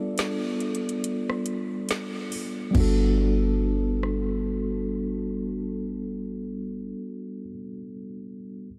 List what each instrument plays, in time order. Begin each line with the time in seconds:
Already playing: tine electric piano G3 B3 D4 F4 A4 D5
0.18 snare, closed hi-hat
0.60 closed hi-hat
0.75 closed hi-hat
0.89 closed hi-hat
1.04 closed hi-hat
1.30 cross-stick
1.46 closed hi-hat
1.89 snare, closed hi-hat
2.32 open hi-hat
2.71 808-style bass G1, tine electric piano G3 B3, kick, crash
2.76 tine electric piano D4 F#4
2.80 tine electric piano A4
4.03 cross-stick